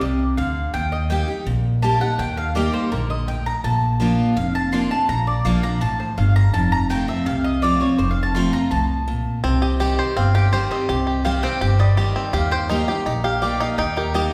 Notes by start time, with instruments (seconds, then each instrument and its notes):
0.01 upright bass C2, steel-string acoustic guitar C3, mandolin D#5
0.37 upright bass D2, steel-string acoustic guitar D3, mandolin F5
0.73 upright bass D#2, steel-string acoustic guitar D#3, mandolin G5
0.92 mandolin D#5
1.10 steel-string acoustic guitar G3 A#3 D#4 G4, mandolin G5
1.28 steel-string acoustic guitar D#4 G4
1.46 upright bass A#1, steel-string acoustic guitar A#2
1.82 steel-string acoustic guitar G3 A#3 D#4 G4, mandolin A5
2.00 steel-string acoustic guitar D#4 G4, mandolin F#5
2.19 upright bass D#2, steel-string acoustic guitar D#3, mandolin G5
2.37 mandolin F5
2.55 steel-string acoustic guitar G3 A#3 D#4 G4, mandolin D5
2.74 mandolin C5
2.91 upright bass A#1, steel-string acoustic guitar D3, mandolin A#4
3.10 mandolin D#5
3.28 steel-string acoustic guitar A2, mandolin G5
3.46 mandolin A#5
3.64 upright bass A#1, steel-string acoustic guitar A#2, mandolin A5
4.00 steel-string acoustic guitar F3 A#3 D4 F4
4.37 upright bass F1, steel-string acoustic guitar F2, mandolin F5
4.55 mandolin A5
4.72 steel-string acoustic guitar F3 A#3 D4 F4, mandolin C6
4.91 steel-string acoustic guitar D4 F4, mandolin A5
5.09 upright bass A#1, steel-string acoustic guitar A#2, mandolin A#5
5.27 mandolin D5
5.45 upright bass A#1, steel-string acoustic guitar F3 A#3 D4 F4, mandolin F5
5.63 steel-string acoustic guitar D4 F4, mandolin A#5
5.81 upright bass A1, steel-string acoustic guitar A2, mandolin A5
6.00 mandolin C5
6.18 upright bass G1, steel-string acoustic guitar G2, mandolin F5
6.36 mandolin A#5
6.54 upright bass F1, steel-string acoustic guitar F2, mandolin A5
6.72 mandolin A#5
6.90 steel-string acoustic guitar F3 A3 C4 F4, mandolin G5
7.08 steel-string acoustic guitar C4 F4, mandolin E5
7.26 upright bass C2, steel-string acoustic guitar C3, mandolin F5
7.44 mandolin D#5
7.62 steel-string acoustic guitar F3 A3 C4 F4, mandolin D5
7.80 steel-string acoustic guitar C4 F4, mandolin C#5
7.98 upright bass F1, steel-string acoustic guitar F2, mandolin C5
8.11 mandolin F5
8.23 mandolin A5
8.35 steel-string acoustic guitar F3 A3 C4 F4, mandolin C6
8.53 steel-string acoustic guitar C4 F4, mandolin A#5
8.71 upright bass C2, steel-string acoustic guitar A2, mandolin A5
9.08 steel-string acoustic guitar A#2
9.44 upright bass C2, steel-string acoustic guitar C3, five-string banjo C4
9.62 five-string banjo G4, mandolin D#5
9.80 steel-string acoustic guitar D#3 G3 C4 G4, five-string banjo G4
9.99 five-string banjo C5
10.16 upright bass G1, steel-string acoustic guitar G2, five-string banjo C4, mandolin F5
10.35 five-string banjo G4, mandolin G5
10.52 steel-string acoustic guitar D#3 G3 C4 G4, five-string banjo C5
10.71 five-string banjo C4, mandolin D#5
10.89 upright bass C2, steel-string acoustic guitar C3, five-string banjo G4
11.07 five-string banjo G4
11.24 steel-string acoustic guitar D#3 G3 C4 G4, five-string banjo G4, mandolin F5
11.43 five-string banjo C4, mandolin G5
11.61 upright bass G1, steel-string acoustic guitar G2, five-string banjo G4
11.79 five-string banjo G3, mandolin D#5
11.97 steel-string acoustic guitar D#3 G3 C4 G4, five-string banjo G4
12.16 five-string banjo C4
12.33 upright bass D#2, steel-string acoustic guitar D#3, five-string banjo G4, mandolin F5
12.51 five-string banjo C5, mandolin G5
12.69 steel-string acoustic guitar G3 A#3 D#4 G4, five-string banjo D#4
12.88 steel-string acoustic guitar D#4 G4, five-string banjo G4
13.06 upright bass A#1, steel-string acoustic guitar A#2, five-string banjo D#4
13.24 five-string banjo G4, mandolin F5
13.42 steel-string acoustic guitar G3 A#3 D#4 G4, five-string banjo G4, mandolin D5
13.60 five-string banjo D#4, mandolin F5
13.78 upright bass D#2, steel-string acoustic guitar D#3, five-string banjo D#4, mandolin G5
13.97 five-string banjo G4, mandolin A#4
14.14 steel-string acoustic guitar G3 A#3 D#4 G4, five-string banjo G4, mandolin D#5